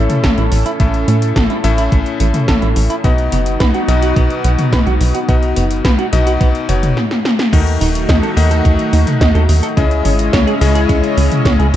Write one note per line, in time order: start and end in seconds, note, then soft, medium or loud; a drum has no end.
0.00 0.76 A2 medium
0.00 0.76 C#4 medium
0.00 3.00 C#4 medium
0.00 0.76 E4 medium
0.00 3.00 E4 medium
0.00 0.76 A4 medium
0.00 3.00 A4 medium
0.00 0.76 E5 loud
0.10 closed hi-hat soft
0.10 mid tom medium
0.24 0.36 A1 loud
0.24 0.31 A4 medium
0.24 kick loud
0.24 snare loud
0.24 closed hi-hat soft
0.38 0.50 A1 loud
0.38 0.45 E4 medium
0.38 closed hi-hat soft
0.52 0.64 A1 loud
0.52 open hi-hat medium
0.66 0.70 E4 loud
0.66 closed hi-hat soft
0.80 1.05 A1 loud
0.80 1.61 A2 medium
0.80 0.87 A3 medium
0.80 1.61 C#4 medium
0.80 1.61 E4 medium
0.80 1.61 A4 medium
0.80 1.61 E5 medium
0.80 kick loud
0.80 closed hi-hat medium
0.94 closed hi-hat soft
1.08 1.33 A2 medium
1.08 1.15 A3 medium
1.08 closed hi-hat medium
1.22 closed hi-hat soft
1.36 1.49 A1 loud
1.36 1.43 A4 medium
1.36 kick loud
1.36 snare loud
1.36 closed hi-hat soft
1.50 1.57 E4 medium
1.50 closed hi-hat soft
1.64 1.89 A1 loud
1.64 3.01 A2 loud
1.64 3.01 C#4 medium
1.64 3.01 E4 medium
1.64 3.01 A4 medium
1.64 3.01 E5 loud
1.64 closed hi-hat medium
1.78 1.82 E4 loud
1.78 closed hi-hat soft
1.92 2.05 A1 medium
1.92 1.99 A3 medium
1.92 kick loud
1.92 closed hi-hat soft
2.06 closed hi-hat soft
2.20 2.33 A1 medium
2.20 2.27 A3 medium
2.20 closed hi-hat medium
2.34 closed hi-hat soft
2.34 mid tom medium
2.48 2.61 A1 loud
2.48 2.55 A4 medium
2.48 kick loud
2.48 snare loud
2.48 closed hi-hat soft
2.62 2.75 A1 medium
2.62 2.69 E4 medium
2.62 closed hi-hat soft
2.76 2.89 A1 medium
2.76 open hi-hat medium
2.90 2.94 E4 loud
2.90 closed hi-hat soft
3.04 3.29 B1 loud
3.04 3.85 B2 medium
3.04 3.11 B3 medium
3.04 3.85 B3 medium
3.04 6.93 B3 medium
3.04 3.85 D#4 medium
3.04 6.93 D#4 medium
3.04 3.85 F#4 medium
3.04 6.93 F#4 medium
3.04 3.85 D#5 medium
3.04 kick loud
3.04 closed hi-hat medium
3.18 closed hi-hat soft
3.32 3.57 F#1 medium
3.32 3.39 B3 medium
3.32 closed hi-hat medium
3.46 closed hi-hat soft
3.60 3.73 B1 loud
3.60 3.67 B4 medium
3.60 kick loud
3.60 snare loud
3.60 closed hi-hat medium
3.74 3.81 F#4 medium
3.74 closed hi-hat soft
3.88 4.13 B1 loud
3.88 5.25 B2 loud
3.88 5.25 B3 medium
3.88 5.25 D#4 medium
3.88 5.25 F#4 medium
3.88 5.25 D#5 loud
3.88 closed hi-hat medium
4.02 4.07 F#4 loud
4.02 closed hi-hat soft
4.16 4.29 B1 medium
4.16 4.23 B3 medium
4.16 kick loud
4.16 closed hi-hat soft
4.30 closed hi-hat soft
4.44 4.57 B1 medium
4.44 4.51 B3 medium
4.44 closed hi-hat medium
4.59 closed hi-hat soft
4.59 mid tom medium
4.72 4.85 B1 loud
4.72 4.79 B4 medium
4.72 kick loud
4.72 snare loud
4.72 closed hi-hat medium
4.86 4.99 B1 loud
4.86 4.93 F#4 medium
4.86 closed hi-hat soft
5.01 5.13 B1 medium
5.01 open hi-hat medium
5.14 5.19 F#4 loud
5.14 closed hi-hat soft
5.29 5.54 B1 loud
5.29 6.09 B2 medium
5.29 6.09 B3 medium
5.29 5.36 B3 medium
5.29 6.09 D#4 medium
5.29 6.09 F#4 medium
5.29 6.09 D#5 medium
5.29 kick loud
5.29 closed hi-hat medium
5.43 closed hi-hat soft
5.56 5.82 F#1 medium
5.56 5.64 B3 medium
5.56 closed hi-hat loud
5.71 closed hi-hat medium
5.85 5.97 B1 loud
5.85 5.92 B4 medium
5.85 kick loud
5.85 snare loud
5.85 closed hi-hat medium
5.99 6.06 F#4 medium
5.99 closed hi-hat soft
6.13 6.38 B1 loud
6.13 6.66 B2 loud
6.13 6.66 B3 medium
6.13 6.66 D#4 medium
6.13 6.66 F#4 medium
6.13 6.66 D#5 loud
6.13 closed hi-hat medium
6.27 6.31 F#4 loud
6.27 closed hi-hat medium
6.41 6.53 B1 medium
6.41 6.48 B3 medium
6.41 kick loud
6.41 closed hi-hat medium
6.55 closed hi-hat soft
6.69 6.94 F#1 medium
6.69 6.97 B2 medium
6.69 6.73 B3 medium
6.69 6.97 B3 medium
6.69 6.97 D#4 medium
6.69 6.97 F#4 medium
6.69 6.97 C#5 medium
6.69 closed hi-hat medium
6.83 closed hi-hat medium
6.83 mid tom medium
6.97 snare medium
7.11 snare medium
7.25 snare medium
7.39 snare medium
7.53 7.78 D#2 loud
7.53 8.34 D#3 medium
7.53 8.34 A3 medium
7.53 9.75 A3 medium
7.53 8.34 D#4 medium
7.53 7.60 D#4 medium
7.53 9.75 D#4 medium
7.53 8.34 F#4 medium
7.53 9.75 F#4 medium
7.53 8.34 D#5 medium
7.53 kick loud
7.53 closed hi-hat medium
7.53 crash loud
7.67 closed hi-hat soft
7.81 8.06 D#1 medium
7.81 7.88 D#4 medium
7.81 open hi-hat medium
7.95 closed hi-hat medium
8.09 8.21 D#2 loud
8.09 8.16 D#5 medium
8.09 kick loud
8.09 snare loud
8.09 closed hi-hat medium
8.23 8.30 A4 medium
8.23 closed hi-hat soft
8.37 8.62 D#2 loud
8.37 9.74 D#3 loud
8.37 9.74 A3 medium
8.37 9.74 D#4 medium
8.37 9.74 F#4 medium
8.37 9.74 D#5 loud
8.37 open hi-hat medium
8.51 8.55 A4 loud
8.51 closed hi-hat medium
8.65 8.77 D#2 medium
8.65 8.72 D#4 medium
8.65 kick loud
8.65 closed hi-hat medium
8.79 closed hi-hat soft
8.93 9.05 D#2 medium
8.93 9.00 D#4 medium
8.93 open hi-hat medium
9.07 closed hi-hat medium
9.07 mid tom medium
9.21 9.34 D#2 loud
9.21 9.28 D#5 medium
9.21 kick loud
9.21 snare loud
9.21 closed hi-hat medium
9.35 9.47 D#2 loud
9.35 9.42 A4 medium
9.35 closed hi-hat soft
9.49 9.61 D#2 medium
9.49 open hi-hat medium
9.63 9.67 A4 loud
9.63 closed hi-hat medium
9.77 10.02 C#2 loud
9.77 10.58 C#3 medium
9.77 11.76 G#3 medium
9.77 9.84 C#4 medium
9.77 10.58 C#4 medium
9.77 11.76 C#4 medium
9.77 10.58 E4 medium
9.77 11.76 E4 medium
9.77 10.58 G#4 medium
9.77 11.76 C#5 medium
9.77 10.58 D#5 medium
9.77 11.76 D#5 medium
9.77 kick loud
9.77 closed hi-hat medium
9.91 closed hi-hat soft
10.05 10.30 G#1 medium
10.05 10.12 C#4 medium
10.05 open hi-hat medium
10.19 closed hi-hat medium
10.33 10.46 C#2 loud
10.33 10.40 C#5 medium
10.33 kick loud
10.33 snare loud
10.33 closed hi-hat medium
10.47 10.54 G#4 medium
10.47 closed hi-hat soft
10.61 10.86 C#2 loud
10.61 11.76 C#3 loud
10.61 11.76 C#4 medium
10.61 11.76 E4 medium
10.61 11.76 G#4 medium
10.61 11.76 D#5 loud
10.61 open hi-hat medium
10.75 10.79 G#4 loud
10.75 closed hi-hat medium
10.89 11.02 C#2 medium
10.89 10.96 C#4 medium
10.89 kick loud
10.89 closed hi-hat medium
11.04 closed hi-hat soft
11.17 11.30 C#2 medium
11.17 11.24 C#4 medium
11.17 open hi-hat medium
11.32 closed hi-hat medium
11.32 mid tom medium
11.45 11.58 C#2 loud
11.45 11.52 C#5 medium
11.45 kick loud
11.45 snare loud
11.45 closed hi-hat medium
11.59 11.72 C#2 loud
11.59 11.66 G#4 medium
11.59 closed hi-hat soft